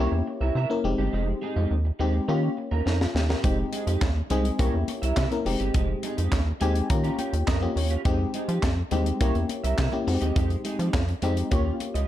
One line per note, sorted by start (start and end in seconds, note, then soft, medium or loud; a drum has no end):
0.00 0.55 A#3 medium
0.00 0.55 C#4 medium
0.00 0.18 E4 medium
0.00 0.56 E4 medium
0.00 0.56 G4 medium
0.00 0.12 A#4 loud
0.00 0.11 C#5 loud
0.12 0.22 E2 loud
0.12 muted clean electric guitar stroke medium
0.27 muted clean electric guitar stroke soft
0.41 0.51 C2 medium
0.41 0.54 E4 medium
0.41 0.55 A#4 medium
0.41 0.56 E5 medium
0.55 0.66 C3 loud
0.55 0.76 E4 medium
0.55 0.70 A#4 medium
0.55 0.70 E5 medium
0.70 0.84 A#3 medium
0.70 0.84 C#4 medium
0.70 0.84 E4 medium
0.70 0.85 A#4 medium
0.70 muted clean electric guitar stroke soft
0.84 0.94 F1 medium
0.84 1.77 G#3 medium
0.84 1.77 C4 medium
0.84 1.77 D#4 medium
0.84 1.77 G4 medium
0.84 muted clean electric guitar stroke soft
0.98 1.09 G1 medium
0.98 1.12 G#3 soft
0.98 1.13 D#4 medium
0.98 1.14 G4 medium
1.13 1.34 F1 loud
1.13 1.34 G#3 medium
1.13 1.28 D#4 medium
1.13 1.26 G4 medium
1.28 muted clean electric guitar stroke medium
1.42 1.57 G#3 medium
1.42 1.56 D#4 medium
1.42 1.56 G#4 medium
1.56 1.67 F2 loud
1.56 1.74 G#3 medium
1.56 1.73 D#4 medium
1.56 1.73 G4 medium
1.71 1.91 D#2 medium
1.85 muted clean electric guitar stroke medium
1.99 2.20 D#2 loud
1.99 2.20 G#3 medium
1.99 2.29 G#3 medium
1.99 2.29 C4 medium
1.99 2.29 D#4 medium
1.99 2.14 D#4 medium
1.99 2.28 G4 loud
1.99 2.13 G4 medium
2.14 muted clean electric guitar stroke soft
2.28 2.49 D#3 loud
2.28 2.86 A#3 medium
2.28 2.49 C#4 medium
2.28 2.86 C#4 medium
2.28 2.58 F4 medium
2.28 2.43 F4 medium
2.28 2.58 G4 loud
2.28 2.42 G4 medium
2.43 muted clean electric guitar stroke medium
2.57 muted clean electric guitar stroke soft
2.71 2.82 D#2 medium
2.71 2.84 C#4 medium
2.71 2.85 F4 medium
2.71 2.86 A#4 medium
2.85 3.07 F2 medium
2.85 3.07 C#4 medium
2.85 3.00 D#4 medium
2.85 3.00 F4 medium
2.85 3.00 A#4 medium
2.85 snare medium
3.00 3.15 F4 medium
3.00 muted clean electric guitar stroke soft
3.00 snare medium
3.15 3.35 D#2 loud
3.15 3.29 G4 medium
3.15 muted clean electric guitar stroke soft
3.15 snare medium
3.29 3.43 C#4 medium
3.29 3.44 F4 medium
3.29 3.44 G4 medium
3.29 3.57 A#4 medium
3.29 snare medium
3.43 3.64 F1 medium
3.43 3.64 G#3 medium
3.43 4.06 G#3 medium
3.43 4.06 C4 medium
3.43 3.58 D#4 medium
3.43 4.06 D#4 medium
3.43 4.06 G4 medium
3.43 3.57 G4 medium
3.43 kick loud
3.43 closed hi-hat medium
3.58 muted clean electric guitar stroke soft
3.72 3.88 G#3 medium
3.72 3.87 D#4 medium
3.72 3.87 G#4 medium
3.72 closed hi-hat medium
3.87 3.97 F2 loud
3.87 4.04 G#3 soft
3.87 4.04 D#4 medium
3.87 4.03 G4 medium
3.87 closed hi-hat medium
4.01 4.22 D#2 loud
4.01 kick loud
4.01 snare loud
4.01 clap medium
4.01 closed hi-hat medium
4.01 high conga medium
4.16 muted clean electric guitar stroke soft
4.30 4.51 C2 medium
4.30 4.51 G#3 medium
4.30 4.59 G#3 loud
4.30 4.59 C4 medium
4.30 4.59 D#4 medium
4.30 4.45 D#4 medium
4.30 4.43 G4 medium
4.30 4.60 G#4 loud
4.30 closed hi-hat medium
4.30 low conga medium
4.45 muted clean electric guitar stroke soft
4.45 closed hi-hat medium
4.59 4.70 C2 loud
4.59 5.17 A#3 medium
4.59 5.17 C#4 medium
4.59 4.80 E4 medium
4.59 5.17 E4 medium
4.59 5.17 G4 medium
4.59 4.74 A#4 medium
4.59 4.72 C#5 medium
4.59 kick loud
4.59 closed hi-hat loud
4.59 muted conga medium
4.74 4.84 E2 medium
4.74 muted clean electric guitar stroke soft
4.88 muted clean electric guitar stroke soft
4.88 closed hi-hat medium
4.88 muted conga medium
5.02 5.13 C2 medium
5.02 5.15 E4 soft
5.02 5.16 A#4 medium
5.02 5.17 E5 medium
5.02 closed hi-hat medium
5.16 5.27 C3 loud
5.16 5.37 E4 medium
5.16 5.31 A#4 medium
5.16 5.31 E5 medium
5.16 kick loud
5.16 snare loud
5.16 clap medium
5.16 closed hi-hat medium
5.16 high conga medium
5.31 5.46 A#3 medium
5.31 5.46 C#4 medium
5.31 5.46 E4 medium
5.31 5.46 A#4 medium
5.31 muted clean electric guitar stroke soft
5.31 closed hi-hat soft
5.31 high conga medium
5.46 5.56 F1 loud
5.46 6.38 G#3 medium
5.46 6.38 C4 medium
5.46 6.38 D#4 medium
5.46 6.38 G4 loud
5.46 muted clean electric guitar stroke soft
5.46 open hi-hat medium
5.60 5.70 G1 medium
5.60 5.73 G#3 soft
5.60 5.74 D#4 medium
5.60 5.75 G4 medium
5.60 closed hi-hat soft
5.74 5.95 F1 loud
5.74 5.95 G#3 medium
5.74 5.89 D#4 medium
5.74 5.88 G4 medium
5.74 kick loud
5.74 closed hi-hat medium
5.89 muted clean electric guitar stroke soft
6.03 6.18 G#3 medium
6.03 6.17 D#4 medium
6.03 6.17 G#4 medium
6.03 closed hi-hat medium
6.17 6.28 F2 loud
6.17 6.35 G#3 soft
6.17 6.34 D#4 medium
6.17 6.34 G4 medium
6.17 closed hi-hat medium
6.32 6.53 D#2 medium
6.32 kick medium
6.32 snare loud
6.32 clap medium
6.32 closed hi-hat medium
6.32 high conga medium
6.46 muted clean electric guitar stroke soft
6.60 6.82 D#2 loud
6.60 6.82 G#3 medium
6.60 6.90 G#3 medium
6.60 6.90 C4 medium
6.60 6.75 D#4 medium
6.60 6.90 D#4 medium
6.60 6.90 G4 loud
6.60 6.74 G4 medium
6.60 6.88 G#5 medium
6.60 closed hi-hat medium
6.60 muted conga soft
6.75 muted clean electric guitar stroke medium
6.75 closed hi-hat soft
6.90 7.11 D#3 medium
6.90 7.48 A#3 medium
6.90 7.48 C#4 medium
6.90 7.48 F4 medium
6.90 7.48 G4 medium
6.90 7.17 A#5 medium
6.90 muted clean electric guitar stroke soft
6.90 kick loud
6.90 closed hi-hat loud
6.90 muted conga soft
7.04 7.17 C#4 medium
7.04 7.18 F4 medium
7.04 7.19 G4 medium
7.04 closed hi-hat soft
7.18 7.35 C#4 medium
7.18 7.33 F4 medium
7.18 7.32 G4 medium
7.18 7.46 G5 medium
7.18 closed hi-hat medium
7.18 muted conga soft
7.33 7.43 D#2 loud
7.33 muted clean electric guitar stroke soft
7.33 closed hi-hat medium
7.47 7.68 F2 medium
7.47 7.68 C#4 medium
7.47 7.62 F4 loud
7.47 7.62 A#4 loud
7.47 7.75 D#5 medium
7.47 kick loud
7.47 snare loud
7.47 clap medium
7.47 closed hi-hat medium
7.47 high conga medium
7.62 7.93 A#3 medium
7.62 7.93 C#4 medium
7.62 7.93 F4 medium
7.62 7.93 G4 medium
7.62 muted clean electric guitar stroke soft
7.62 high conga medium
7.76 7.97 D#2 loud
7.76 8.03 C#5 medium
7.76 muted clean electric guitar stroke soft
7.76 open hi-hat medium
7.90 8.04 C#4 medium
7.90 8.05 F4 medium
7.90 8.05 G4 medium
7.90 closed hi-hat soft
8.05 8.26 F2 loud
8.05 8.26 G#3 medium
8.05 8.67 G#3 medium
8.05 8.67 C4 medium
8.05 8.68 D#4 medium
8.05 8.20 D#4 medium
8.05 8.68 G4 loud
8.05 8.18 G4 loud
8.05 kick loud
8.05 closed hi-hat medium
8.20 muted clean electric guitar stroke medium
8.34 8.49 G#3 medium
8.34 8.48 D#4 medium
8.34 8.48 G#4 medium
8.34 closed hi-hat medium
8.48 8.59 F3 loud
8.48 8.66 G#3 soft
8.48 8.65 D#4 medium
8.48 8.65 G4 medium
8.48 closed hi-hat medium
8.63 8.84 F2 medium
8.63 kick medium
8.63 snare loud
8.63 clap medium
8.63 closed hi-hat medium
8.63 high conga medium
8.77 muted clean electric guitar stroke soft
8.91 9.12 D#2 medium
8.91 9.21 G#3 medium
8.91 9.12 G#3 medium
8.91 9.21 C4 medium
8.91 9.21 D#4 medium
8.91 9.06 D#4 medium
8.91 9.20 G4 loud
8.91 9.05 G4 medium
8.91 closed hi-hat medium
8.91 low conga medium
9.06 muted clean electric guitar stroke soft
9.06 closed hi-hat medium
9.20 9.31 C2 loud
9.20 9.78 A#3 loud
9.20 9.79 C#4 medium
9.20 9.41 E4 medium
9.20 9.79 E4 medium
9.20 9.79 G4 loud
9.20 9.35 A#4 medium
9.20 9.34 C#5 medium
9.20 kick loud
9.20 closed hi-hat loud
9.20 muted conga soft
9.35 9.45 E2 medium
9.35 muted clean electric guitar stroke soft
9.35 closed hi-hat soft
9.49 muted clean electric guitar stroke soft
9.49 closed hi-hat medium
9.49 muted conga soft
9.64 9.74 C2 medium
9.64 9.77 E4 soft
9.64 9.78 A#4 medium
9.64 9.79 E5 medium
9.64 closed hi-hat medium
9.78 9.89 C3 medium
9.78 9.99 E4 medium
9.78 9.93 A#4 medium
9.78 9.92 E5 medium
9.78 kick loud
9.78 snare loud
9.78 clap medium
9.78 closed hi-hat medium
9.78 high conga medium
9.92 10.07 A#3 medium
9.92 10.07 C#4 medium
9.92 10.07 E4 medium
9.92 10.07 G4 medium
9.92 muted clean electric guitar stroke soft
9.92 high conga medium
10.07 10.18 F2 loud
10.07 11.00 G#3 medium
10.07 11.00 C4 medium
10.07 11.00 D#4 medium
10.07 10.14 F#4 medium
10.07 muted clean electric guitar stroke soft
10.07 open hi-hat medium
10.14 11.03 G4 medium
10.21 10.32 D#2 medium
10.21 10.34 G#3 soft
10.21 10.35 D#4 medium
10.21 10.36 G4 medium
10.21 closed hi-hat soft
10.36 10.57 F2 loud
10.36 10.57 G#3 medium
10.36 10.50 D#4 medium
10.36 10.49 G4 medium
10.36 kick loud
10.36 closed hi-hat medium
10.50 muted clean electric guitar stroke soft
10.50 closed hi-hat soft
10.64 10.80 G#3 medium
10.64 10.79 D#4 medium
10.64 10.79 G#4 medium
10.64 closed hi-hat medium
10.79 10.90 F3 loud
10.79 10.96 G#3 soft
10.79 10.96 D#4 medium
10.79 10.95 G4 medium
10.79 closed hi-hat medium
10.94 11.14 F2 loud
10.94 kick loud
10.94 snare loud
10.94 clap medium
10.94 closed hi-hat medium
10.94 high conga medium
11.08 muted clean electric guitar stroke soft
11.08 closed hi-hat soft
11.22 11.43 F2 medium
11.22 11.43 G#3 medium
11.22 11.52 G#3 medium
11.22 11.52 C4 medium
11.22 11.37 D#4 medium
11.22 11.52 D#4 medium
11.22 11.51 G4 loud
11.22 11.36 G4 loud
11.22 closed hi-hat medium
11.37 muted clean electric guitar stroke medium
11.37 closed hi-hat medium
11.51 11.72 D#2 loud
11.51 11.98 A#3 medium
11.51 11.98 C#4 medium
11.51 11.72 F4 medium
11.51 11.98 F4 medium
11.51 11.98 G4 loud
11.51 11.66 G4 medium
11.51 11.65 C#5 medium
11.51 kick loud
11.51 closed hi-hat loud
11.51 muted conga soft
11.66 muted clean electric guitar stroke soft
11.80 muted clean electric guitar stroke soft
11.80 closed hi-hat medium
11.80 muted conga soft
11.94 12.05 C#2 medium
11.94 12.08 F4 medium
11.94 12.08 G4 medium
11.94 12.08 D#5 medium
11.94 closed hi-hat medium